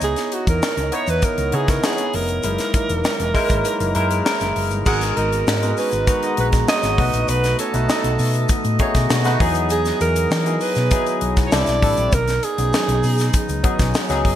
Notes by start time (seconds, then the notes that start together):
Already playing: C#3 E3 B3 D#4 E4 C#5 D#5
0.01 C#2 G#4, closed hi-hat, shaker
0.16 snare, closed hi-hat, shaker
0.32 F#4, closed hi-hat
0.47 E2 A#4, kick, closed hi-hat, shaker
0.62 snare, shaker
0.77 C#2, closed hi-hat, shaker
0.92 B3 D#4 E4 C#5, closed hi-hat
1.07 E2 B4, closed hi-hat, shaker
1.22 A#4, kick, closed hi-hat, shaker
1.38 C#2, closed hi-hat, shaker
1.52 C#3 B3 D#4 E4 G#4 C#5, closed hi-hat
1.68 A#4, kick, snare, closed hi-hat, shaker
1.83 B3 D#4 E4 G#4 C#5, snare, shaker
1.98 closed hi-hat, shaker
2.13 F1 A#4, open hi-hat
2.28 closed hi-hat, shaker
2.43 F#1 E3 F#3 G#3 A#3 D#4 E4 A#4, closed hi-hat, shaker
2.58 snare, closed hi-hat, shaker
2.74 kick, closed hi-hat, shaker
2.89 E1, closed hi-hat, shaker
3.04 snare, shaker
3.20 E1, closed hi-hat, shaker
3.34 G#3 D#4 E4 A#4, kick, open hi-hat, shaker
3.49 G#1, kick, closed hi-hat, shaker
3.65 closed hi-hat, shaker
3.80 F#1, closed hi-hat, shaker
3.95 F#2 G#3 D#4 E4 A#4, closed hi-hat
4.11 closed hi-hat, shaker
4.25 G#3 D#4 E4 A#4, snare, shaker
4.40 F#1, snare, closed hi-hat, shaker
4.56 F#1, open hi-hat
4.71 G1, closed hi-hat, shaker
4.86 G#1 G#3 B3 D#4 F#4 G#4 A#4 F#5 A#5, kick, crash, shaker
5.01 snare, closed hi-hat, shaker
5.16 G#1 D#4 A#4 D#5, closed hi-hat, shaker
5.32 closed hi-hat, shaker
5.47 G#2, snare, shaker
5.62 G#3 B3 D#4 F#4 G#4 B4, closed hi-hat, shaker
5.77 C#4 B4 C#5, open hi-hat, shaker
5.92 G#1, closed hi-hat, shaker
6.07 G#3 B3 D#4 F#4 A#5, kick, closed hi-hat, shaker
6.23 D#4 D#5, closed hi-hat, shaker
6.37 A#1 B3 B4, closed hi-hat
6.52 kick, snare, closed hi-hat, shaker
6.68 G#3 B3 D#4 F#4 C#5 D#5, snare, shaker
6.83 G#1, snare, closed hi-hat, shaker
6.98 B1 A3 B3 D#4 F#4 B4 D#5, kick, open hi-hat
7.13 A#1, closed hi-hat, shaker
7.28 B1 B4, closed hi-hat, shaker
7.44 snare, closed hi-hat, shaker
7.59 C#4 A4 C#5, closed hi-hat, shaker
7.74 B1 A3 B3 D#4 F#4 B4 D#5, closed hi-hat, shaker
7.88 D#4 D#5, snare, shaker
8.04 B1, closed hi-hat, shaker
8.19 B2, open hi-hat, shaker
8.33 closed hi-hat, shaker
8.49 kick, closed hi-hat, shaker
8.64 A2, closed hi-hat, shaker
8.79 A3 B3 C#4 D#4 F#4 G#4 C#5, kick, closed hi-hat
8.95 B2, kick, snare, closed hi-hat, shaker
9.10 B2, snare, shaker
9.24 A3 B3 D#4 F#4 B4, snare, closed hi-hat, shaker
9.40 E2 E3 F#3 B3 D#4 E4 F#4 G#4, kick, open hi-hat
9.54 closed hi-hat, shaker
9.69 G#4, closed hi-hat, shaker
9.85 snare, closed hi-hat, shaker
10.01 E2 A#4, closed hi-hat, shaker
10.16 closed hi-hat, shaker
10.31 E3, snare, shaker
10.45 F#3 B3 D#4 E4 G#4, closed hi-hat, shaker
10.60 B4, open hi-hat, shaker
10.75 B2, snare, closed hi-hat, shaker
10.91 F#3 B3 D#4 E4 G#4, kick, closed hi-hat, shaker
11.06 closed hi-hat, shaker
11.21 B1, closed hi-hat
11.37 kick, snare, closed hi-hat, shaker
11.46 C#5
11.52 C2 C3 G3 A3 C4 D4 E4 A4 D5, snare, shaker
11.66 B1, snare, closed hi-hat, shaker
11.82 A1 G3 C4 D4 E4 A4, kick, open hi-hat
11.97 A#1, closed hi-hat, shaker
12.12 B1 G#3 B3 D#4 A#4, kick, closed hi-hat, shaker
12.28 snare, closed hi-hat, shaker
12.43 G#4, closed hi-hat, shaker
12.58 B1 F#3 B3 C#4 D#4 G#4, closed hi-hat, shaker
12.73 snare, shaker
12.88 B1, closed hi-hat, shaker
13.03 B2, open hi-hat, shaker
13.18 snare, closed hi-hat, shaker
13.33 kick, closed hi-hat, shaker
13.49 C#2, closed hi-hat, shaker
13.63 F#3 B3 C#4 D#4 G#4, kick, closed hi-hat
13.79 B1, kick, snare, closed hi-hat, shaker
13.94 snare, shaker
14.08 C#2 F#3 B3 C#4 D#4 G#4, snare, closed hi-hat, shaker
14.25 F#1, kick, open hi-hat